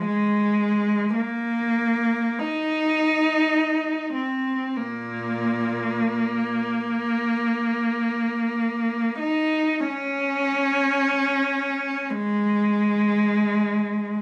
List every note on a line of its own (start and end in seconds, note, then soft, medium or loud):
0.05 1.13 G#3 medium
1.16 2.39 A#3 medium
2.39 4.13 D#4 medium
4.14 4.76 C4 soft
4.77 6.62 A#2 soft
4.77 9.21 A#3 soft
9.19 9.83 D#4 medium
9.88 12.12 C#4 medium
12.11 14.22 G#3 medium